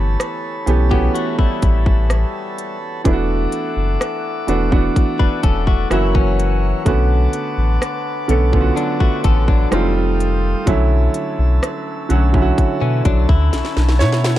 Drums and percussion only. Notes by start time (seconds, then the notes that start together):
0.20 cross-stick, closed hi-hat
0.67 closed hi-hat
0.91 kick
1.15 closed hi-hat
1.39 kick
1.62 kick, closed hi-hat
1.86 kick
2.10 cross-stick, closed hi-hat
2.58 closed hi-hat
3.05 kick, closed hi-hat
3.52 closed hi-hat
4.01 cross-stick, closed hi-hat
4.48 closed hi-hat
4.72 kick
4.96 kick, closed hi-hat
5.20 kick
5.43 kick, closed hi-hat
5.67 kick
5.91 cross-stick, closed hi-hat
6.15 kick
6.40 closed hi-hat
6.86 kick, closed hi-hat
7.33 closed hi-hat
7.82 cross-stick, closed hi-hat
8.29 closed hi-hat
8.53 kick
8.77 closed hi-hat
9.00 kick
9.24 kick, closed hi-hat
9.48 kick
9.72 cross-stick, closed hi-hat
10.20 closed hi-hat
10.67 kick, closed hi-hat
11.14 closed hi-hat
11.63 cross-stick, closed hi-hat
12.10 closed hi-hat
12.34 kick
12.58 kick, closed hi-hat
13.05 kick, closed hi-hat
13.29 kick
13.53 snare, closed hi-hat
13.65 snare
13.77 snare
13.89 snare
14.01 snare, closed hi-hat
14.12 snare
14.24 snare